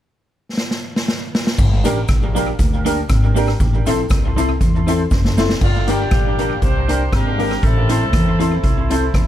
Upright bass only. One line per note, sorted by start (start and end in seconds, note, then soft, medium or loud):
1.59 1.81 G1 loud
1.85 2.05 A1 medium
2.09 2.52 A#1 medium
2.59 3.02 D2 loud
3.09 3.52 G#1 medium
3.60 3.83 A1 loud
3.86 4.07 A#1 medium
4.11 4.53 C2 medium
4.61 5.04 E2 loud
5.12 5.54 F#1 medium
5.62 6.04 G1 medium
6.11 6.54 A#1 medium
6.63 7.05 C2 medium
7.13 7.55 G#1 medium
7.63 8.13 A1 loud
8.13 8.56 E2 medium
8.64 9.07 C2 medium
9.14 9.27 E1 medium